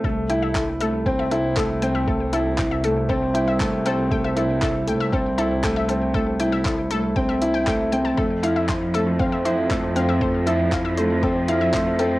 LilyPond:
<<
  \new Staff \with { instrumentName = "Synth arpeggio sound" } { \time 4/4 \key f \lydian \tempo 4 = 118 a'16 r16 g''16 e''16 a'16 r16 a'16 r16 g''16 e''16 a'16 r16 a'16 r16 g''16 e''16 | a'16 r16 a'16 r16 g''16 e''16 a'16 r16 a'16 r16 g''16 e''16 a'16 r16 a'16 r16 | g''16 e''16 a'16 r16 a'16 r16 g''16 e''16 a'16 r16 a'16 r16 g''16 e''16 a'16 r16 | a'16 r16 g''16 e''16 a'16 r16 a'16 r16 g''16 e''16 r16 g''16 g''16 r16 g''16 a''16 |
a'16 r16 f''16 e''16 c''16 r16 a'16 r16 f''16 e''16 c''16 r16 a'16 r16 f''16 e''16 | c''16 r16 a'16 r16 f''16 e''16 c''16 r16 a'16 r16 f''16 e''16 c''16 r16 a'16 r16 | }
  \new Staff \with { instrumentName = "Felt piano" } { \time 4/4 \key f \lydian a8 e'8 e'8 a8 c'8 e'8 a8 c'8 | a8 e'8 e'8 a8 c'8 e'8 a8 c'8 | a8 e'8 e'8 a8 c'8 e'8 a8 c'8 | a8 e'8 e'8 a8 c'8 e'8 a8 c'8 |
a8 e'8 e'8 a8 c'8 e'8 a8 c'8 | a8 e'8 e'8 a8 c'8 e'8 a8 c'8 | }
  \new Staff \with { instrumentName = "String section" } { \clef bass \time 4/4 \key f \lydian r1 | r1 | r1 | r1 |
f1~ | f1 | }
  \new Staff \with { instrumentName = "Double bass section" } { \clef bass \time 4/4 \key f \lydian c,1~ | c,1~ | c,1~ | c,1 |
f,1~ | f,1 | }
  \new DrumStaff \with { instrumentName = "Drums" } \drummode { \time 4/4 bd8 hh8 <hc bd>8 hh8 bd8 hh8 <hc bd>8 hh8 | bd8 hh8 <hc bd>8 hh8 bd8 hh8 <hc bd>8 hh8 | bd8 hh8 <hc bd>8 hh8 bd8 hh8 <hc bd>8 hh8 | bd8 hh8 <hc bd>8 hh8 bd8 hh8 <hc bd>8 hh8 |
bd8 hh8 <hc bd>8 hh8 bd8 hh8 <hc bd>8 hh8 | bd8 hh8 <hc bd>8 hh8 bd8 hh8 <hc bd>8 hh8 | }
>>